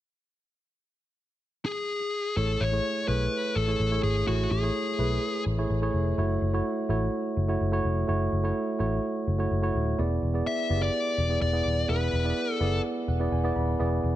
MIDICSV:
0, 0, Header, 1, 4, 480
1, 0, Start_track
1, 0, Key_signature, 3, "major"
1, 0, Tempo, 476190
1, 468, Time_signature, 4, 2, 24, 8
1, 14270, End_track
2, 0, Start_track
2, 0, Title_t, "Lead electric guitar"
2, 0, Program_c, 0, 29
2, 1669, Note_on_c, 0, 68, 87
2, 2384, Note_off_c, 0, 68, 0
2, 2388, Note_on_c, 0, 69, 96
2, 2626, Note_on_c, 0, 73, 99
2, 2635, Note_off_c, 0, 69, 0
2, 3102, Note_off_c, 0, 73, 0
2, 3106, Note_on_c, 0, 71, 87
2, 3584, Note_on_c, 0, 69, 86
2, 3601, Note_off_c, 0, 71, 0
2, 4032, Note_off_c, 0, 69, 0
2, 4065, Note_on_c, 0, 68, 78
2, 4290, Note_off_c, 0, 68, 0
2, 4308, Note_on_c, 0, 66, 86
2, 4545, Note_off_c, 0, 66, 0
2, 4549, Note_on_c, 0, 68, 79
2, 5468, Note_off_c, 0, 68, 0
2, 10553, Note_on_c, 0, 76, 100
2, 10906, Note_off_c, 0, 76, 0
2, 10910, Note_on_c, 0, 74, 90
2, 11468, Note_off_c, 0, 74, 0
2, 11510, Note_on_c, 0, 74, 81
2, 11955, Note_off_c, 0, 74, 0
2, 11987, Note_on_c, 0, 71, 81
2, 12643, Note_off_c, 0, 71, 0
2, 12643, Note_on_c, 0, 69, 81
2, 12907, Note_off_c, 0, 69, 0
2, 14270, End_track
3, 0, Start_track
3, 0, Title_t, "Tine electric piano"
3, 0, Program_c, 1, 4
3, 2383, Note_on_c, 1, 57, 65
3, 2386, Note_on_c, 1, 64, 61
3, 2390, Note_on_c, 1, 68, 61
3, 2394, Note_on_c, 1, 73, 74
3, 2548, Control_c, 1, 64, 127
3, 2667, Note_off_c, 1, 57, 0
3, 2669, Note_off_c, 1, 64, 0
3, 2671, Note_off_c, 1, 68, 0
3, 2673, Note_off_c, 1, 73, 0
3, 2743, Note_on_c, 1, 57, 71
3, 2747, Note_on_c, 1, 64, 62
3, 2751, Note_on_c, 1, 68, 61
3, 2755, Note_on_c, 1, 73, 77
3, 3027, Note_off_c, 1, 57, 0
3, 3030, Note_off_c, 1, 64, 0
3, 3031, Note_off_c, 1, 68, 0
3, 3034, Note_off_c, 1, 73, 0
3, 3103, Note_on_c, 1, 57, 67
3, 3108, Note_on_c, 1, 64, 61
3, 3111, Note_on_c, 1, 68, 61
3, 3115, Note_on_c, 1, 73, 71
3, 3576, Note_off_c, 1, 57, 0
3, 3578, Note_off_c, 1, 64, 0
3, 3580, Note_off_c, 1, 68, 0
3, 3582, Note_off_c, 1, 73, 0
3, 3701, Note_on_c, 1, 57, 65
3, 3706, Note_on_c, 1, 64, 62
3, 3710, Note_on_c, 1, 68, 59
3, 3713, Note_on_c, 1, 73, 74
3, 3893, Note_off_c, 1, 57, 0
3, 3895, Note_off_c, 1, 64, 0
3, 3897, Note_off_c, 1, 68, 0
3, 3898, Note_off_c, 1, 73, 0
3, 3941, Note_on_c, 1, 57, 75
3, 3945, Note_on_c, 1, 64, 62
3, 3949, Note_on_c, 1, 68, 69
3, 3952, Note_on_c, 1, 73, 78
3, 4227, Note_off_c, 1, 57, 0
3, 4229, Note_off_c, 1, 64, 0
3, 4230, Note_off_c, 1, 68, 0
3, 4232, Note_off_c, 1, 73, 0
3, 4301, Note_on_c, 1, 57, 71
3, 4306, Note_on_c, 1, 64, 61
3, 4310, Note_on_c, 1, 68, 63
3, 4315, Note_on_c, 1, 73, 75
3, 4587, Note_off_c, 1, 57, 0
3, 4589, Note_off_c, 1, 64, 0
3, 4591, Note_off_c, 1, 68, 0
3, 4594, Note_off_c, 1, 73, 0
3, 4664, Note_on_c, 1, 57, 68
3, 4666, Note_on_c, 1, 64, 62
3, 4671, Note_on_c, 1, 68, 64
3, 4675, Note_on_c, 1, 73, 80
3, 4948, Note_off_c, 1, 57, 0
3, 4949, Note_off_c, 1, 64, 0
3, 4951, Note_off_c, 1, 68, 0
3, 4953, Note_off_c, 1, 73, 0
3, 5024, Note_on_c, 1, 57, 67
3, 5026, Note_on_c, 1, 64, 66
3, 5032, Note_on_c, 1, 68, 66
3, 5035, Note_on_c, 1, 71, 75
3, 5496, Note_off_c, 1, 57, 0
3, 5497, Note_off_c, 1, 64, 0
3, 5500, Note_off_c, 1, 68, 0
3, 5502, Note_off_c, 1, 71, 0
3, 5623, Note_on_c, 1, 57, 75
3, 5627, Note_on_c, 1, 64, 76
3, 5631, Note_on_c, 1, 68, 70
3, 5635, Note_on_c, 1, 73, 86
3, 5814, Note_off_c, 1, 57, 0
3, 5816, Note_off_c, 1, 64, 0
3, 5817, Note_off_c, 1, 68, 0
3, 5819, Note_off_c, 1, 73, 0
3, 5864, Note_on_c, 1, 57, 86
3, 5867, Note_on_c, 1, 64, 77
3, 5873, Note_on_c, 1, 68, 77
3, 5876, Note_on_c, 1, 73, 94
3, 6148, Note_off_c, 1, 57, 0
3, 6150, Note_off_c, 1, 64, 0
3, 6152, Note_off_c, 1, 68, 0
3, 6154, Note_off_c, 1, 73, 0
3, 6228, Note_on_c, 1, 57, 79
3, 6230, Note_on_c, 1, 64, 78
3, 6234, Note_on_c, 1, 66, 74
3, 6238, Note_on_c, 1, 73, 86
3, 6243, Control_c, 1, 64, 0
3, 6421, Control_c, 1, 64, 127
3, 6510, Note_off_c, 1, 57, 0
3, 6511, Note_off_c, 1, 64, 0
3, 6513, Note_off_c, 1, 66, 0
3, 6515, Note_off_c, 1, 73, 0
3, 6585, Note_on_c, 1, 57, 82
3, 6589, Note_on_c, 1, 64, 79
3, 6593, Note_on_c, 1, 66, 74
3, 6597, Note_on_c, 1, 73, 91
3, 6869, Note_off_c, 1, 57, 0
3, 6871, Note_off_c, 1, 64, 0
3, 6873, Note_off_c, 1, 66, 0
3, 6875, Note_off_c, 1, 73, 0
3, 6945, Note_on_c, 1, 57, 82
3, 6949, Note_on_c, 1, 64, 74
3, 6952, Note_on_c, 1, 66, 78
3, 6956, Note_on_c, 1, 73, 94
3, 7417, Note_off_c, 1, 57, 0
3, 7419, Note_off_c, 1, 64, 0
3, 7420, Note_off_c, 1, 66, 0
3, 7422, Note_off_c, 1, 73, 0
3, 7542, Note_on_c, 1, 57, 80
3, 7546, Note_on_c, 1, 64, 76
3, 7550, Note_on_c, 1, 66, 72
3, 7553, Note_on_c, 1, 73, 89
3, 7733, Note_off_c, 1, 57, 0
3, 7735, Note_off_c, 1, 64, 0
3, 7737, Note_off_c, 1, 66, 0
3, 7739, Note_off_c, 1, 73, 0
3, 7782, Note_on_c, 1, 57, 85
3, 7787, Note_on_c, 1, 64, 78
3, 7791, Note_on_c, 1, 66, 78
3, 7795, Note_on_c, 1, 73, 100
3, 8067, Note_off_c, 1, 57, 0
3, 8069, Note_off_c, 1, 64, 0
3, 8072, Note_off_c, 1, 66, 0
3, 8073, Note_off_c, 1, 73, 0
3, 8143, Note_on_c, 1, 57, 84
3, 8147, Note_on_c, 1, 64, 73
3, 8151, Note_on_c, 1, 66, 77
3, 8155, Note_on_c, 1, 73, 90
3, 8427, Note_off_c, 1, 57, 0
3, 8430, Note_off_c, 1, 64, 0
3, 8432, Note_off_c, 1, 66, 0
3, 8433, Note_off_c, 1, 73, 0
3, 8502, Note_on_c, 1, 57, 86
3, 8506, Note_on_c, 1, 64, 74
3, 8511, Note_on_c, 1, 66, 77
3, 8515, Note_on_c, 1, 73, 91
3, 8787, Note_off_c, 1, 57, 0
3, 8789, Note_off_c, 1, 64, 0
3, 8792, Note_off_c, 1, 66, 0
3, 8793, Note_off_c, 1, 73, 0
3, 8861, Note_on_c, 1, 57, 80
3, 8865, Note_on_c, 1, 64, 71
3, 8868, Note_on_c, 1, 66, 69
3, 8874, Note_on_c, 1, 73, 90
3, 9335, Note_off_c, 1, 57, 0
3, 9337, Note_off_c, 1, 64, 0
3, 9338, Note_off_c, 1, 66, 0
3, 9341, Note_off_c, 1, 73, 0
3, 9460, Note_on_c, 1, 57, 82
3, 9465, Note_on_c, 1, 64, 72
3, 9469, Note_on_c, 1, 66, 72
3, 9473, Note_on_c, 1, 73, 86
3, 9652, Note_off_c, 1, 57, 0
3, 9655, Note_off_c, 1, 64, 0
3, 9656, Note_off_c, 1, 66, 0
3, 9658, Note_off_c, 1, 73, 0
3, 9701, Note_on_c, 1, 57, 82
3, 9706, Note_on_c, 1, 64, 80
3, 9709, Note_on_c, 1, 66, 76
3, 9713, Note_on_c, 1, 73, 94
3, 9987, Note_off_c, 1, 57, 0
3, 9989, Note_off_c, 1, 64, 0
3, 9991, Note_off_c, 1, 66, 0
3, 9992, Note_off_c, 1, 73, 0
3, 10062, Note_on_c, 1, 59, 84
3, 10066, Note_on_c, 1, 64, 74
3, 10069, Note_on_c, 1, 68, 68
3, 10074, Note_on_c, 1, 74, 87
3, 10081, Control_c, 1, 64, 0
3, 10283, Control_c, 1, 64, 127
3, 10347, Note_off_c, 1, 59, 0
3, 10349, Note_off_c, 1, 64, 0
3, 10351, Note_off_c, 1, 68, 0
3, 10353, Note_off_c, 1, 74, 0
3, 10422, Note_on_c, 1, 59, 67
3, 10425, Note_on_c, 1, 64, 63
3, 10429, Note_on_c, 1, 68, 59
3, 10434, Note_on_c, 1, 74, 76
3, 10707, Note_off_c, 1, 59, 0
3, 10709, Note_off_c, 1, 64, 0
3, 10711, Note_off_c, 1, 68, 0
3, 10713, Note_off_c, 1, 74, 0
3, 10782, Note_on_c, 1, 59, 71
3, 10786, Note_on_c, 1, 64, 62
3, 10790, Note_on_c, 1, 67, 50
3, 10794, Note_on_c, 1, 74, 73
3, 10847, Note_off_c, 1, 67, 0
3, 10848, Note_on_c, 1, 68, 60
3, 11255, Note_off_c, 1, 59, 0
3, 11257, Note_off_c, 1, 64, 0
3, 11261, Note_off_c, 1, 74, 0
3, 11288, Note_off_c, 1, 68, 0
3, 11381, Note_on_c, 1, 59, 66
3, 11386, Note_on_c, 1, 64, 60
3, 11390, Note_on_c, 1, 68, 62
3, 11393, Note_on_c, 1, 74, 76
3, 11573, Note_off_c, 1, 59, 0
3, 11575, Note_off_c, 1, 64, 0
3, 11577, Note_off_c, 1, 68, 0
3, 11579, Note_off_c, 1, 74, 0
3, 11621, Note_on_c, 1, 59, 75
3, 11625, Note_on_c, 1, 64, 63
3, 11628, Note_on_c, 1, 68, 63
3, 11633, Note_on_c, 1, 74, 75
3, 11907, Note_off_c, 1, 59, 0
3, 11909, Note_off_c, 1, 64, 0
3, 11910, Note_off_c, 1, 68, 0
3, 11912, Note_off_c, 1, 74, 0
3, 11983, Note_on_c, 1, 59, 68
3, 11987, Note_on_c, 1, 64, 65
3, 11991, Note_on_c, 1, 68, 61
3, 11995, Note_on_c, 1, 76, 76
3, 12268, Note_off_c, 1, 59, 0
3, 12269, Note_off_c, 1, 64, 0
3, 12272, Note_off_c, 1, 68, 0
3, 12274, Note_off_c, 1, 76, 0
3, 12341, Note_on_c, 1, 59, 72
3, 12345, Note_on_c, 1, 64, 66
3, 12349, Note_on_c, 1, 68, 65
3, 12353, Note_on_c, 1, 74, 77
3, 12627, Note_off_c, 1, 59, 0
3, 12629, Note_off_c, 1, 64, 0
3, 12631, Note_off_c, 1, 68, 0
3, 12633, Note_off_c, 1, 74, 0
3, 12702, Note_on_c, 1, 59, 84
3, 12706, Note_on_c, 1, 64, 75
3, 12709, Note_on_c, 1, 68, 74
3, 12714, Note_on_c, 1, 74, 94
3, 13175, Note_off_c, 1, 59, 0
3, 13177, Note_off_c, 1, 64, 0
3, 13179, Note_off_c, 1, 68, 0
3, 13181, Note_off_c, 1, 74, 0
3, 13188, Note_on_c, 1, 78, 66
3, 13302, Note_on_c, 1, 59, 79
3, 13307, Note_on_c, 1, 64, 72
3, 13310, Note_on_c, 1, 68, 72
3, 13314, Note_on_c, 1, 74, 83
3, 13411, Note_off_c, 1, 78, 0
3, 13428, Note_on_c, 1, 80, 69
3, 13493, Note_off_c, 1, 59, 0
3, 13495, Note_off_c, 1, 64, 0
3, 13497, Note_off_c, 1, 68, 0
3, 13499, Note_off_c, 1, 74, 0
3, 13543, Note_on_c, 1, 59, 85
3, 13546, Note_on_c, 1, 64, 76
3, 13550, Note_on_c, 1, 68, 78
3, 13554, Note_on_c, 1, 74, 97
3, 13651, Note_off_c, 1, 80, 0
3, 13668, Note_on_c, 1, 83, 62
3, 13827, Note_off_c, 1, 59, 0
3, 13829, Note_off_c, 1, 64, 0
3, 13831, Note_off_c, 1, 68, 0
3, 13833, Note_off_c, 1, 74, 0
3, 13891, Note_off_c, 1, 83, 0
3, 13903, Note_on_c, 1, 59, 83
3, 13907, Note_on_c, 1, 64, 77
3, 13911, Note_on_c, 1, 68, 74
3, 13915, Note_on_c, 1, 74, 94
3, 14188, Note_off_c, 1, 59, 0
3, 14190, Note_off_c, 1, 64, 0
3, 14191, Note_off_c, 1, 68, 0
3, 14193, Note_off_c, 1, 74, 0
3, 14270, End_track
4, 0, Start_track
4, 0, Title_t, "Picked electric bass"
4, 0, Program_c, 2, 34
4, 2387, Note_on_c, 2, 33, 95
4, 2567, Note_off_c, 2, 33, 0
4, 2626, Note_on_c, 2, 33, 96
4, 2806, Note_off_c, 2, 33, 0
4, 3107, Note_on_c, 2, 35, 82
4, 3287, Note_off_c, 2, 35, 0
4, 3587, Note_on_c, 2, 33, 90
4, 3767, Note_off_c, 2, 33, 0
4, 3827, Note_on_c, 2, 33, 92
4, 4007, Note_off_c, 2, 33, 0
4, 4067, Note_on_c, 2, 32, 86
4, 4248, Note_off_c, 2, 32, 0
4, 4307, Note_on_c, 2, 33, 93
4, 4487, Note_off_c, 2, 33, 0
4, 4546, Note_on_c, 2, 33, 101
4, 4727, Note_off_c, 2, 33, 0
4, 5027, Note_on_c, 2, 35, 78
4, 5207, Note_off_c, 2, 35, 0
4, 5505, Note_on_c, 2, 33, 90
4, 5686, Note_off_c, 2, 33, 0
4, 5746, Note_on_c, 2, 33, 87
4, 5927, Note_off_c, 2, 33, 0
4, 5986, Note_on_c, 2, 29, 85
4, 6166, Note_off_c, 2, 29, 0
4, 6226, Note_on_c, 2, 30, 100
4, 6407, Note_off_c, 2, 30, 0
4, 6467, Note_on_c, 2, 30, 99
4, 6647, Note_off_c, 2, 30, 0
4, 6946, Note_on_c, 2, 33, 91
4, 7126, Note_off_c, 2, 33, 0
4, 7427, Note_on_c, 2, 30, 85
4, 7607, Note_off_c, 2, 30, 0
4, 7668, Note_on_c, 2, 30, 83
4, 7848, Note_off_c, 2, 30, 0
4, 7907, Note_on_c, 2, 29, 86
4, 8087, Note_off_c, 2, 29, 0
4, 8148, Note_on_c, 2, 30, 91
4, 8328, Note_off_c, 2, 30, 0
4, 8389, Note_on_c, 2, 30, 91
4, 8569, Note_off_c, 2, 30, 0
4, 8869, Note_on_c, 2, 33, 80
4, 9048, Note_off_c, 2, 33, 0
4, 9348, Note_on_c, 2, 30, 86
4, 9528, Note_off_c, 2, 30, 0
4, 9586, Note_on_c, 2, 30, 90
4, 9766, Note_off_c, 2, 30, 0
4, 9826, Note_on_c, 2, 27, 85
4, 10006, Note_off_c, 2, 27, 0
4, 10067, Note_on_c, 2, 28, 98
4, 10247, Note_off_c, 2, 28, 0
4, 10305, Note_on_c, 2, 28, 93
4, 10486, Note_off_c, 2, 28, 0
4, 10787, Note_on_c, 2, 30, 81
4, 10967, Note_off_c, 2, 30, 0
4, 11268, Note_on_c, 2, 28, 83
4, 11448, Note_off_c, 2, 28, 0
4, 11506, Note_on_c, 2, 28, 97
4, 11687, Note_off_c, 2, 28, 0
4, 11746, Note_on_c, 2, 27, 79
4, 11927, Note_off_c, 2, 27, 0
4, 11986, Note_on_c, 2, 28, 100
4, 12167, Note_off_c, 2, 28, 0
4, 12227, Note_on_c, 2, 28, 94
4, 12407, Note_off_c, 2, 28, 0
4, 12705, Note_on_c, 2, 30, 80
4, 12886, Note_off_c, 2, 30, 0
4, 13183, Note_on_c, 2, 28, 89
4, 13365, Note_off_c, 2, 28, 0
4, 13424, Note_on_c, 2, 28, 100
4, 13606, Note_off_c, 2, 28, 0
4, 13667, Note_on_c, 2, 27, 78
4, 13847, Note_off_c, 2, 27, 0
4, 13906, Note_on_c, 2, 28, 101
4, 14087, Note_off_c, 2, 28, 0
4, 14149, Note_on_c, 2, 28, 101
4, 14270, Note_off_c, 2, 28, 0
4, 14270, End_track
0, 0, End_of_file